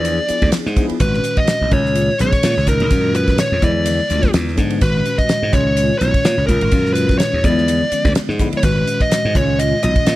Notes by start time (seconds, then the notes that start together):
Already playing: E2 F3 B3 D4 E4 G#4 D5
0.05 hi-hat pedal, ride
0.27 F3 B3 D4 E4 G#4, muted slap bass stroke, hi-hat pedal, ride
0.42 D2, kick, ride
0.52 snare, hi-hat pedal, ride
0.66 G#2, snare
0.76 F3 B3 D4 E4 G#4, kick, hi-hat pedal, ride
0.89 muted slap bass stroke, ride
1.00 G#1 A#2 D#3 G#3 C#4 F#4 B4, kick, hi-hat pedal, ride
1.14 snare
1.24 hi-hat pedal, ride
1.37 D#5, kick, ride
1.47 snare, hi-hat pedal, ride
1.61 B1
1.71 C#2 A#2 D#3 G#3 C#4 F4 C#5, kick, hi-hat pedal, ride
1.85 snare
1.95 hi-hat pedal, ride
2.19 B1 A#2 D#3 G#3 C#4 G#4 C#5, hi-hat pedal, ride
2.32 kick, snare, ride
2.43 A#2, snare, hi-hat pedal, ride
2.57 C#2, snare
2.67 C#2 A#2 D#3 G#3 C#4 D#4 A#4, kick, hi-hat pedal, ride
2.80 C#2, ride
2.90 F#2 A#2 D#3 G#3 C#4 F4, kick, hi-hat pedal, ride
3.15 B4, hi-hat pedal, ride
3.28 kick, snare, ride
3.38 C#5, snare, hi-hat pedal, ride
3.52 F2
3.62 E2 D3 F3 G#3 B3 E4 D5, kick, hi-hat pedal, ride
3.86 hi-hat pedal, ride
4.09 D2 D3 F3 G#3 B3 F4, hi-hat pedal, ride
4.23 kick, snare, ride
4.34 E2, snare, hi-hat pedal, ride
4.48 snare
4.56 G#2 D3 F3 G#3 B3 D4, kick, hi-hat pedal, ride
4.70 ride
4.81 G#1 A#2 D#3 G#3 C#4 F#4 B4, kick, hi-hat pedal, ride
5.05 hi-hat pedal, ride
5.18 D#5, kick, snare, ride
5.29 snare, hi-hat pedal, ride
5.43 G#2
5.53 C#2 A#2 D#3 G#3 C#4 F4 C#5, kick, hi-hat pedal, ride
5.77 hi-hat pedal, ride
5.99 B1 A#2 D#3 G#3 C#4 F4 C#5, hi-hat pedal, ride
6.14 kick, ride
6.25 A#2, snare, hi-hat pedal, ride
6.38 C#2
6.47 C#2 A#2 D#3 G#3 C#4 F4 A#4, kick, hi-hat pedal, ride
6.61 G#1, ride
6.71 F#2 A#2 D#3 G#3 C#4 F4, kick, hi-hat pedal, ride
6.85 snare
6.94 B4, hi-hat pedal, ride
7.09 kick, snare, ride
7.18 C#5, snare, hi-hat pedal, ride
7.33 D#2
7.44 E2 D3 F3 G#3 B3 E4 D5, kick, hi-hat pedal, ride
7.58 snare
7.68 hi-hat pedal, ride
7.92 D3 F3 G#3 B3 C#4, muted slap bass stroke, hi-hat pedal, ride
8.05 D2, kick, snare, ride
8.15 snare, hi-hat pedal, ride
8.29 G#2, snare
8.39 D3 F3 G#3 B3 E4, kick, hi-hat pedal, ride
8.53 muted slap bass stroke, ride
8.57 C#5
8.63 G#1 A#2 D#3 G#3 C#4 F#4 B4, kick, hi-hat pedal, ride
8.87 hi-hat pedal, ride
9.00 D#5, kick, ride
9.11 snare, hi-hat pedal, ride
9.25 G#2
9.34 C#2 A#2 D#3 G#3 C#4 F4 C#5, kick, hi-hat pedal, ride
9.59 D#5, hi-hat pedal, ride
9.82 B1 A#2 D#3 G#3 C#4 F4 D#5, hi-hat pedal, ride
9.96 kick, ride
10.06 A#2, snare, hi-hat pedal, ride